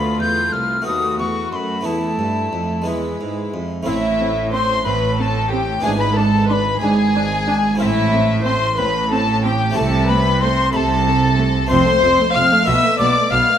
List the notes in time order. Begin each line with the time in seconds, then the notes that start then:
Already playing: D2 A3 B3 F4 B5
0.19 E2 G6
0.52 C2 F6
0.82 D#2 A3 B3 F#4
0.86 D#2 A3 F#4 B5 D#6
1.19 E2 C#6
1.52 F#2 C6
1.56 B5
1.81 A3 B3 E4
1.85 E2 A3 E4 A5 B5
2.18 G2
2.52 F2
2.82 G#3 B3 E4
2.86 E2 G#3 E4 B5
3.20 G#2
3.53 F2
3.83 A1 A3 C4 E4 E5 F5
3.87 A2 E5
4.20 C4
4.52 C4 C5 C6
4.85 A1 A2 C4 B4 B5
5.18 C4 A4 A5 B5
5.50 C4 G4 G5
5.80 G#1 G#2 B3 D4 E4 G#4 G#5
5.84 G#2 D4
5.99 B4 B5
6.15 D4 A4 A5
6.48 D4 B4 B5 C6
6.53 B5
6.80 G#1 G#2 D4 G#4 G#5
7.15 D4
7.47 D4
7.75 A3 C4 E4 F5
7.80 A1 A2 C4 E5
8.13 C4
8.45 C4 C5 C6
8.77 A1 A2 C4 B4 B5
9.10 C4 A4 A5
9.43 C4 G4 G5
9.71 A3 C4 E4
9.75 C2 C3 A3 A4 A5
10.09 A3 B4 B5
10.41 A3 C5 C6
10.73 C2 C3 A3 A4 A5 B5
11.07 A3
11.38 A3
11.67 F2 A3 C4 F4 C6
11.71 F1 F2 C5
11.87 A3
12.03 F1 F2 C4
12.19 A3
12.34 F1 F2 C4 F5 F6
12.51 A3
12.63 B2 A3 B3 F4 E5 E6
12.67 B1 B2 B3 E6
12.84 A3
12.98 B1 B2 B3 D5 D6
13.16 A3
13.31 B1 B2 B3 F5 F6
13.49 A3